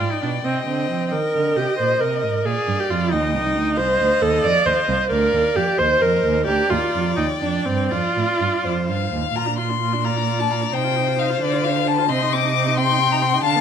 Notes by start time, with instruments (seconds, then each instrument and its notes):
Already playing: viola F4, violin D5 G5
0.00 cello G#2
0.12 viola D#4
0.22 cello B2, viola D4
0.44 cello C3, viola C4, violin D#5
0.67 cello D3, viola C4
0.90 cello F3
1.12 cello D#3, viola A#4, violin D#5
1.35 cello D3
1.57 cello C3, viola G4
1.78 cello A#2, viola C5, violin D#5
2.01 cello C3, viola A#4
2.23 cello G#2
2.45 cello A#2, viola G#4, violin D5 F5
2.68 cello G2
2.80 viola G4
2.90 cello F2, viola F4
3.12 cello D#2, viola D#4, violin D#5 G5
3.34 cello C2, viola D#4
3.56 cello D2
3.77 cello C2, viola C5, violin D#5 F5
4.01 cello D2
4.22 cello D#2, viola A4
4.44 cello F2, viola D5
4.66 cello D#2, viola C5
4.89 cello C2
5.10 cello D2, viola A#4, violin D5 F5
5.33 cello D#2
5.56 cello F2, viola G4
5.78 cello D#2, violin C5 D#5, viola C5
6.02 cello F2, viola A#4
6.25 cello D#2
6.47 cello D2, viola G4, violin D5 A#5
6.70 cello D#2, viola F4
6.94 cello F2
7.16 cello D#2, viola D#4, violin G5
7.41 cello F2, viola D4
7.66 cello G2, viola C4
7.90 cello F2, viola F4, violin D5 F5
8.16 cello A2
8.41 cello G2
8.64 cello F2, violin C5 D5
8.88 cello G2, violin F5
9.13 cello D#2
9.35 cello A#2, viola F4, violin A#5
9.46 viola D4
9.58 viola F4, violin C6
9.70 viola D4
9.82 viola F4
9.93 viola D4
10.04 viola F4, violin D5 A#5
10.17 viola D4
10.28 viola F4
10.39 viola D4, violin A5
10.50 viola F4, violin A#5
10.62 viola D4
10.73 cello C3, viola D#4, violin C5 G5
10.84 viola F4
10.96 viola D#4
11.08 viola F4
11.18 viola D#4, violin F5
11.30 viola F4
11.41 cello D3, viola D4, violin D5
11.53 viola F4
11.64 viola D4, violin F5
11.77 viola F4
11.87 viola D4, violin A5
11.99 viola F4
12.09 cello C3, viola C4, violin D#5 C6
12.22 viola D#4
12.33 viola C4, violin D6
12.44 viola D#4
12.56 viola C4
12.67 viola D#4
12.77 viola C4, violin G5 C6
12.90 viola D#4
13.01 viola C4
13.12 viola D#4, violin A#5
13.21 viola C4, violin C6
13.34 viola D#4
13.44 cello D3, viola D4, violin F5 A5
13.56 viola B3